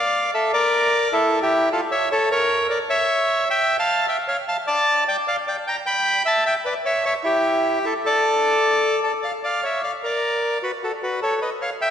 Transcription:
Already playing: D5 F5
0.34 A4 E5
0.54 A#4 D5
1.13 E4 A4
1.42 E4 G4
1.72 F4 A4
1.92 C#5 E5
2.12 A4 C#5
2.31 A#4 C#5
2.70 A#4 D5
2.90 C#5 E5
3.50 E5 G5
3.79 F5 A5
4.08 E5 G5
4.28 C#5 F5
4.48 F5 A5
4.67 D5 A5
5.08 D5 G5
5.28 D5 F5
5.47 D5 G5
5.67 G5 A#5
5.86 G5 B5
6.25 E5 A5
6.46 E5 G5
6.65 B4 D5
6.85 C#5 E5
7.05 C#5 E5
7.24 E4 G4
7.84 E4 A4
8.05 A4 D5
9.03 A4 D5
9.22 D5 F5
9.43 D5 F5
9.63 C#5 E5
9.83 D5 F5
10.03 A#4 D5
10.63 F#4 B4
10.83 F#4 A4
11.03 F#4 B4
11.22 A4 C#5
11.42 B4 D#5
11.61 C#5 F5
11.81 E5 G5

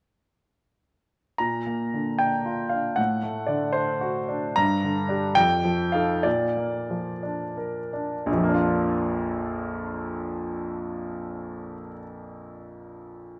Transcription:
1.38 A#2 A#5
1.67 A#3
1.94 D3
2.19 D4 G5
2.45 F4
2.69 D4 F5
2.96 A2 F#5
3.23 A3
3.47 D3 D5
3.73 D4 C5
4.01 F#4
4.29 D4
4.56 G2 A#5
4.84 D3
5.09 D4 G4
5.35 F2 G5
5.65 F3
5.92 D#4 A4 F5
6.23 A#2 D5
6.57 A#3
6.90 F3
7.23 D4
7.57 A#4
7.93 D4
8.26 A#1
8.32 F2
8.38 F3
8.43 A#3
8.49 D4
8.54 F4

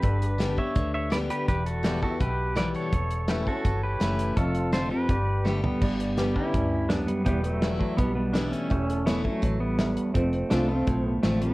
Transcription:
Already playing: G4 B4
0.02 G1 G2 D4 A4 B4, kick, closed hi-hat
0.22 closed hi-hat
0.29 G4
0.38 D3 G3 B3 G4, snare, closed hi-hat
0.56 B3 G4 C#5 E5, kick
0.75 D2 D3, kick, closed hi-hat
0.94 C#5 E5
1.10 D3 G3 B3 G4 B4 D5, snare, closed hi-hat
1.30 G4 B4, closed hi-hat
1.48 E1 E2 G4 B4, kick, closed hi-hat
1.66 F#4 A4, closed hi-hat
1.83 E3 G3 B3 E4 G4 B4 D5, snare, closed hi-hat
2.02 B3 E4 F#4 A4, kick
2.11 E5
2.20 B1 B2 G4 B4, kick, closed hi-hat
2.56 E3 G3 B3 E4 B4 D5, snare, closed hi-hat
2.75 A4 C#5, closed hi-hat
2.92 E1 E2, kick, closed hi-hat
3.11 closed hi-hat
3.28 E3 A3 C#4 E4 G4 B4 E5, snare, closed hi-hat
3.46 C#4 E4 F#4 A4, kick
3.54 A4 C#5
3.65 G1 E3, kick, closed hi-hat
3.83 G4 B4
4.00 F#1 E3 A3 C#4 E4, snare, closed hi-hat
4.19 closed hi-hat
4.36 F1 F2 F4 A4 C#5 E5, kick, closed hi-hat
4.55 C5 F5, closed hi-hat
4.73 D3 A3 C4 F4 A4 C5, snare, closed hi-hat
4.90 C4 F4 G4 B4
5.09 G1 G2 G4 B4 D5, kick, closed hi-hat
5.45 D3 G3 A3 B3 G4, snare
5.64 G3 B3, floor tom
5.80 G1 G2 G4 B4 D5, kick, crash
5.99 G4 B4 D5, closed hi-hat
6.17 D3 G3 B3 G4 B4 D5, snare, closed hi-hat
6.36 C#4 E4, kick
6.53 D2 G2 G4 B4 D5, kick, closed hi-hat
6.89 F#2 B3 D4 G4 B4 D5, snare, closed hi-hat
7.07 G3 B3, closed hi-hat
7.25 E1 E2 G3 B3 E4 G4 B4 D5 G5, kick, closed hi-hat
7.43 F#3 A3 E4 G4 B4, closed hi-hat
7.53 E5
7.61 E3 G3 B3 E4 G4 B4, snare, closed hi-hat
7.79 F#3 A3, kick
7.97 B1 B2 G3 B3 E4 G4 B4, kick, closed hi-hat
8.15 G3 B3
8.33 E3 G3 B3 D4 E4 G4 B4, snare, closed hi-hat
8.51 A3 C#4, closed hi-hat
8.70 E1 E2 E4 G4 A4 C#5 E5, kick, closed hi-hat
8.88 E4 A4 C#5, closed hi-hat
8.96 A4
9.06 E3 A3 B3 C#4 E4 A4 C#5, snare, closed hi-hat
9.24 F#3 A3 C#4 E4, kick
9.42 A1 E3 E4 A4 C#5, kick, closed hi-hat
9.61 G3 B3
9.78 E2 E4 A4 E5, snare, closed hi-hat
9.97 closed hi-hat
10.14 F1 F2 A3 C4 F4 A4 C5, kick, closed hi-hat
10.32 F4 A4 C5, closed hi-hat
10.50 C2 D3 A3 C4 D4 F4 A4 C5 E5, snare, closed hi-hat
10.68 A3 C4 F4
10.73 F5
10.87 B1 A2 F4 A4 C5, kick, closed hi-hat
11.05 B3
11.23 A1 D3 F3 A3 C4 F4 A4 C5, snare, closed hi-hat
11.41 G3 B3 C4 F4, closed hi-hat

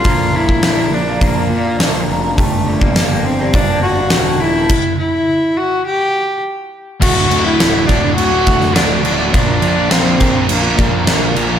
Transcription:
Already playing: F4
0.04 A#1 A#2 F3 A#3 D4 F4 A#4, kick, open hi-hat
0.32 A#1 A#3 D4 E4
0.37 A#4
0.49 kick
0.62 A#1 A#2 F3 A#3 D4 F4 A#4, snare, open hi-hat
0.78 A#3 D4 F4 A#4
0.90 A#1, muted clean electric guitar stroke
0.94 D4
1.08 A#3 D4 F4 A#4
1.21 A#1 A#3, kick, open hi-hat
1.36 A#3 D4 F4 A#4
1.50 A#2
1.65 A#3 D4 F4 A#4
1.78 A#1 A#2 F3 A#3 D4 F4 A#4, snare, open hi-hat
1.96 A#3 D4 F4 A#4
2.07 F1 A#3 D4 F4
2.12 A#4
2.24 A#3 D4 F4 A#4
2.37 G1 G2 D3 G3 A3 D4 G4, kick, open hi-hat
2.65 G1 G3 A#3 D4
2.69 G4
2.81 A#3, kick
2.93 G1 G2 D3 G3, snare, open hi-hat
2.98 A#3 D4 G4
3.11 G3 A#3 D4 G4
3.23 G1 C4, muted clean electric guitar stroke
3.39 G3 A#3 D4 G4
3.53 G1 D4, kick, open hi-hat
3.69 G3 A#3 D4
3.81 G1 F#4
3.98 G3 A#3 D4
4.10 D#1 G2 D3 G3 A#3 D4 G4, snare, open hi-hat
4.26 G3 A#3 D4 G4
4.40 G3 A#3 D4 E4 G4
4.55 G3 A#3 D4 G4
4.69 kick, crash
4.97 E4
5.57 F#4
5.86 G4
7.00 D1 D2 A2 D3 A3 F#4, kick, crash
7.15 D3 A3 F#4
7.30 D1 A2 D3 A3 F#4, crash
7.45 D3 A3 E4 F#4
7.59 D1 D2 A2 D3 A3 F#4, snare, crash
7.88 D1 A2 D3 A3 D4 F#4, kick, snare, crash
8.03 D3 A3 F#4
8.16 D1 F#4, crash
8.32 D3 A3 F#4
8.46 D1 A2 D3 A3 F#4, kick, crash
8.61 snare
8.74 D1 D2 A2 D3 A3 D4 F#4, snare, crash
9.03 D1 A2 D3 A3 F#4, crash
9.17 D3 A3 F#4
9.32 A#1 A#2 F3 A#3 D4 F4 A#4, kick, crash
9.46 A#3 D4 F4 A#4
9.62 A#1 A#3 D4 F4 A#4, crash
9.76 A#3 D4 F4 A#4
9.90 A#1 A#2 F3 A#3 C4 D4 F4 A#4, snare, crash
10.19 A#1 A#3 D4 F4 A#4, kick, crash
10.32 A#3 D4 F4 A#4
10.48 A#1 A#3, crash
10.62 A#3 D4 F4 A#4
10.76 A#1 A#3 D4 F4 A#4, kick, crash
11.05 A#1 A#2 F3 A#3 D4 F4 A#4, snare, crash
11.34 A#1 A#3 D4 F4 A#4, crash
11.49 A#3 D4 F4 A#4

